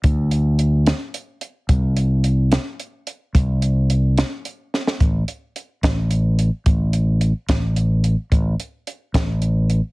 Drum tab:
HH |x-x-x-x-x-x-|x-x-x-x-x-x-|x-x-x-x-x---|x-x-x-x-x-x-|
SD |------o-----|------o-----|------o---oo|------o-----|
BD |o-----------|o-----------|o-----------|o-----o-----|

HH |x-x-x-x-x-x-|x-x-x-x-x-x-|
SD |------o-----|------o-----|
BD |o-----o-----|o-----o-----|